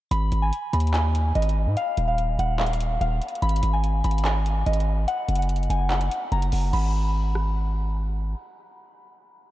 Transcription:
0.11 808-style bass G#1, synth bell B5, closed hi-hat
0.32 808-style bass G#1, closed hi-hat
0.42 synth bell G#5
0.53 closed hi-hat
0.73 808-style bass D#2, synth bell B5, closed hi-hat
0.80 closed hi-hat
0.87 closed hi-hat
0.94 synth bell G#5, clap, closed hi-hat
1.15 closed hi-hat
1.35 808-style bass G#1, synth bell D#5, closed hi-hat
1.42 closed hi-hat
1.49 closed hi-hat
1.66 808-style bass G#2
1.77 synth bell F5, closed hi-hat
1.97 808-style bass D#1, closed hi-hat
2.08 synth bell F5
2.18 closed hi-hat
2.39 808-style bass D#1, synth bell F#5, closed hi-hat
2.60 synth bell F5, clap, closed hi-hat
2.66 closed hi-hat
2.73 closed hi-hat
2.81 closed hi-hat
3.01 808-style bass D#1, synth bell F5, closed hi-hat
3.22 closed hi-hat
3.28 closed hi-hat
3.35 closed hi-hat
3.42 808-style bass G#1, synth bell B5, closed hi-hat
3.49 closed hi-hat
3.56 closed hi-hat
3.63 808-style bass G#1, closed hi-hat
3.73 synth bell G#5
3.84 closed hi-hat
4.04 808-style bass G#1, synth bell B5, closed hi-hat
4.11 closed hi-hat
4.18 closed hi-hat
4.25 synth bell G#5, clap, closed hi-hat
4.46 closed hi-hat
4.66 808-style bass G#1, synth bell D#5, closed hi-hat
4.73 closed hi-hat
4.80 closed hi-hat
5.08 synth bell F#5, closed hi-hat
5.29 808-style bass F#1, closed hi-hat
5.35 synth bell F#5, closed hi-hat
5.42 closed hi-hat
5.49 closed hi-hat
5.56 closed hi-hat
5.63 closed hi-hat
5.70 808-style bass F#1, synth bell G#5, closed hi-hat
5.90 synth bell F#5, clap, closed hi-hat
6.01 closed hi-hat
6.11 closed hi-hat
6.32 808-style bass F#1, synth bell A#5, closed hi-hat
6.42 closed hi-hat
6.52 808-style bass F#1, open hi-hat
6.73 808-style bass G#1, synth bell B5, crash
7.35 cross-stick

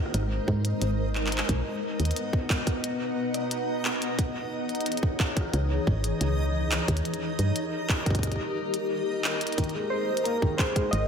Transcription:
Already playing: ambient pad G#3 D#4 A#4 C5, synth texture D#4 D#5
0.06 cross-stick
0.14 fm bass G#1, cross-stick, closed hi-hat
0.23 cross-stick
0.48 fm bass G#2, kick
0.65 closed hi-hat
0.82 fm bass G#1, closed hi-hat
1.15 clap
1.27 clap
1.32 closed hi-hat
1.38 clap
1.49 fm bass B1, ambient pad B3 B4 D#5 F#5, kick, closed hi-hat
2.00 fm bass D#2, closed hi-hat
2.05 closed hi-hat
2.11 closed hi-hat
2.16 closed hi-hat
2.33 kick
2.50 kick, cross-stick, clap
2.67 kick, cross-stick, closed hi-hat
2.84 closed hi-hat
3.34 cross-stick, closed hi-hat
3.51 closed hi-hat
3.85 clap
4.02 closed hi-hat
4.19 ambient pad E3 G#4 C#5, kick, closed hi-hat
4.69 closed hi-hat
4.75 closed hi-hat
4.81 closed hi-hat
4.86 closed hi-hat
4.92 closed hi-hat
4.97 closed hi-hat
5.03 kick
5.20 kick, clap
5.37 kick, cross-stick, closed hi-hat
5.41 cross-stick
5.45 cross-stick
5.49 cross-stick
5.53 fm bass C#2, cross-stick, closed hi-hat
5.87 fm bass G#1, kick
6.04 closed hi-hat
6.21 fm bass C#2, closed hi-hat
6.71 clap, closed hi-hat
6.88 fm bass D#2, ambient pad D#4 G4 A#4, kick, closed hi-hat
6.97 closed hi-hat
7.05 closed hi-hat
7.14 closed hi-hat
7.39 fm bass G2, closed hi-hat
7.56 closed hi-hat
7.89 kick, clap
8.06 kick, cross-stick, closed hi-hat
8.10 kick
8.15 kick, closed hi-hat
8.19 kick
8.23 kick, closed hi-hat
8.27 kick
8.32 kick, closed hi-hat
8.36 kick
8.74 closed hi-hat
9.24 clap
9.41 closed hi-hat
9.47 closed hi-hat
9.52 closed hi-hat
9.58 felt piano D#3, ambient pad G#3 G#4 C5, kick, closed hi-hat
9.64 closed hi-hat
9.69 closed hi-hat
9.75 felt piano G#3
9.90 felt piano G#3, synth keys C5
10.17 closed hi-hat
10.24 felt piano A#3, synth keys A#4, closed hi-hat
10.42 felt piano D#3, kick
10.57 felt piano G#3, synth keys C5, kick, clap
10.76 felt piano G#3, kick, cross-stick, closed hi-hat
10.91 fm bass G#1, synth keys D#5, cross-stick, closed hi-hat

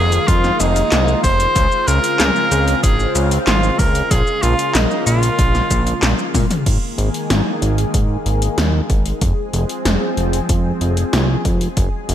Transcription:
Already playing: analog synth bass F1, analog synth pad D#3 G#3 A#3 F4, tenor saxophone G#4
0.12 closed hi-hat, shaker
0.28 analog synth bass F2, tenor saxophone F4, kick, closed hi-hat, shaker
0.44 snare, shaker
0.60 analog synth bass F1, tenor saxophone D#4, closed hi-hat, shaker
0.76 closed hi-hat, shaker
0.92 analog synth bass C2, snare, clap, closed hi-hat, shaker
1.08 shaker
1.24 analog synth bass F1, tenor saxophone C5, kick, open hi-hat, shaker
1.40 closed hi-hat, shaker
1.55 analog synth bass C#2, analog synth pad C#3 C4, kick, closed hi-hat, shaker
1.72 shaker
1.87 analog synth bass C#2, tenor saxophone A#4, closed hi-hat, shaker
2.04 closed hi-hat, shaker
2.20 analog synth bass C#2, snare, clap, closed hi-hat, shaker
2.36 shaker
2.51 analog synth bass C#2, closed hi-hat, shaker
2.68 closed hi-hat, shaker
2.83 analog synth bass G#1, tenor saxophone G#4, kick, closed hi-hat, shaker
2.99 shaker
3.15 analog synth bass C#2, closed hi-hat, shaker
3.31 closed hi-hat, shaker
3.47 analog synth bass G#1, tenor saxophone F4, snare, clap, closed hi-hat, shaker
3.63 shaker
3.79 analog synth bass C#2, tenor saxophone A#4, kick, open hi-hat, shaker
3.95 closed hi-hat, shaker
4.11 analog synth bass A#1, analog synth pad A#3, tenor saxophone G#4, kick, closed hi-hat, shaker
4.27 shaker
4.43 analog synth bass A#1, tenor saxophone F4, closed hi-hat, shaker
4.59 closed hi-hat, shaker
4.75 analog synth bass A#1, tenor saxophone D#4, snare, clap, closed hi-hat, shaker
4.91 shaker
5.07 analog synth bass A#1, tenor saxophone F4, closed hi-hat, shaker
5.23 closed hi-hat, shaker
5.39 analog synth bass A#1, kick, closed hi-hat, shaker
5.55 snare, shaker
5.71 analog synth bass A#1, kick, closed hi-hat, shaker
5.87 closed hi-hat, shaker
6.02 analog synth bass A#1, snare, clap, closed hi-hat, shaker
6.19 shaker
6.34 analog synth bass A#2, kick, open hi-hat, high tom, shaker
6.51 closed hi-hat, mid tom, shaker
6.66 analog synth bass G#1, analog synth pad D#3 G#3 A#3 G#4, kick, closed hi-hat, crash
6.98 analog synth bass G#1, closed hi-hat
7.14 closed hi-hat
7.30 analog synth bass G#1, snare, closed hi-hat
7.62 analog synth bass G#1, closed hi-hat
7.78 closed hi-hat
7.94 analog synth bass G#2, kick, closed hi-hat
8.26 analog synth bass G#1, closed hi-hat
8.42 closed hi-hat
8.58 analog synth bass D#2, snare, closed hi-hat
8.90 analog synth bass G#1, kick, closed hi-hat
9.06 closed hi-hat
9.21 analog synth bass F1, analog synth pad F3 C4, kick, closed hi-hat
9.53 analog synth bass F1, closed hi-hat
9.69 closed hi-hat
9.85 analog synth bass F1, snare, closed hi-hat
10.17 analog synth bass F1, closed hi-hat
10.33 closed hi-hat
10.49 analog synth bass F2, kick, closed hi-hat
10.81 analog synth bass F1, closed hi-hat
10.97 closed hi-hat
11.13 analog synth bass C2, snare, closed hi-hat
11.45 analog synth bass F1, kick, closed hi-hat
11.61 closed hi-hat
11.77 analog synth bass F#1, analog synth pad F#3 G#3 C#4, kick, closed hi-hat
12.09 analog synth bass F#1, closed hi-hat

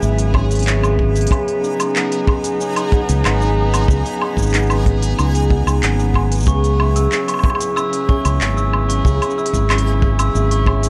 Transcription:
Already playing: hammered dulcimer C#3 C#4 G#4, string quartet C#3 F#3 B3 E4, synth texture G#4 G#5
0.02 fingered electric bass G#1, hammered dulcimer E4, cabasa
0.18 open hi-hat, cabasa
0.34 hammered dulcimer C#4 E4 G#4, kick, low woodblock
0.51 open hi-hat, cabasa
0.55 open hi-hat
0.59 open hi-hat
0.63 open hi-hat
0.67 hammered dulcimer C#4, clap, cabasa
0.83 cabasa, low woodblock
0.99 kick
1.16 open hi-hat, cabasa
1.21 open hi-hat
1.27 open hi-hat
1.31 hammered dulcimer C#3, kick, cabasa, low woodblock
1.48 open hi-hat
1.55 string quartet D#4
1.63 hammered dulcimer D#4, cabasa
1.80 open hi-hat, cabasa, low woodblock
1.96 hammered dulcimer B3 D#4 G#4, clap, cabasa
2.12 open hi-hat, cabasa
2.27 hammered dulcimer G#4, kick, low woodblock
2.44 open hi-hat, cabasa
2.60 hammered dulcimer C#4, cabasa
2.76 hammered dulcimer D#4, open hi-hat, cabasa, low woodblock
2.92 hammered dulcimer B3 D#4 G#4, kick
3.09 fingered electric bass C#2, open hi-hat, cabasa
3.25 fingered electric bass G#1, hammered dulcimer B3, clap, cabasa, low woodblock
3.42 cabasa
3.74 open hi-hat, cabasa, low woodblock
3.88 fingered electric bass C#2, hammered dulcimer C#3, kick, cabasa
4.06 open hi-hat, cabasa
4.21 hammered dulcimer D#4, low woodblock
4.37 fingered electric bass G#1, kick, cabasa
4.42 cabasa
4.46 cabasa
4.50 hammered dulcimer B3, clap, open hi-hat, cabasa
4.54 hammered dulcimer D#4 G#4, cabasa
4.58 cabasa
4.62 cabasa
4.66 cabasa, low woodblock
4.70 cabasa
4.86 hammered dulcimer G#4, kick, open hi-hat
5.02 open hi-hat, cabasa
5.19 fingered electric bass C#2, hammered dulcimer D#4, cabasa, low woodblock
5.35 open hi-hat, cabasa
5.50 hammered dulcimer B3 D#4 G#4, kick
5.67 fingered electric bass C#2, cabasa, low woodblock
5.83 fingered electric bass G#1, hammered dulcimer B3, clap, open hi-hat, cabasa
6.00 cabasa
6.14 kick, low woodblock
6.32 open hi-hat, cabasa
6.35 cabasa
6.38 cabasa
6.40 cabasa
6.42 cabasa
6.45 fingered electric bass C#2, string quartet C#3, hammered dulcimer C#3, kick, cabasa
6.48 glockenspiel C#6, cabasa
6.64 open hi-hat, cabasa
6.79 hammered dulcimer E4, low woodblock
6.96 glockenspiel E6, open hi-hat, cabasa
7.12 hammered dulcimer C#4 E4 G#4, clap, cabasa
7.28 glockenspiel C#6, open hi-hat, cabasa, low woodblock
7.34 low woodblock
7.39 low woodblock
7.44 hammered dulcimer G#4, kick, low woodblock
7.50 low woodblock
7.55 low woodblock
7.61 open hi-hat, cabasa
7.66 string quartet E4
7.76 hammered dulcimer E4, glockenspiel E6, cabasa, low woodblock
7.93 open hi-hat, cabasa
8.08 hammered dulcimer C#4 E4 G#4, glockenspiel C#6, kick
8.25 fingered electric bass C#2, open hi-hat, cabasa, low woodblock
8.41 fingered electric bass G#1, hammered dulcimer C#4, clap, cabasa
8.57 glockenspiel E6, cabasa
8.73 low woodblock
8.89 glockenspiel C#6, open hi-hat, cabasa
9.05 fingered electric bass C#2, hammered dulcimer C#3, kick, cabasa
9.22 open hi-hat, cabasa, low woodblock
9.30 cabasa
9.38 hammered dulcimer E4, glockenspiel E6, cabasa
9.46 open hi-hat, cabasa
9.54 fingered electric bass G#1, kick, cabasa
9.70 hammered dulcimer C#4 E4 G#4, glockenspiel C#6, clap, cabasa, low woodblock
9.78 open hi-hat
9.87 cabasa
10.02 hammered dulcimer G#4, kick
10.19 glockenspiel E6, open hi-hat, cabasa, low woodblock
10.35 fingered electric bass G#1, hammered dulcimer E4, cabasa
10.51 glockenspiel C#6, open hi-hat
10.66 hammered dulcimer C#4 E4 G#4, kick, low woodblock
10.83 open hi-hat, cabasa

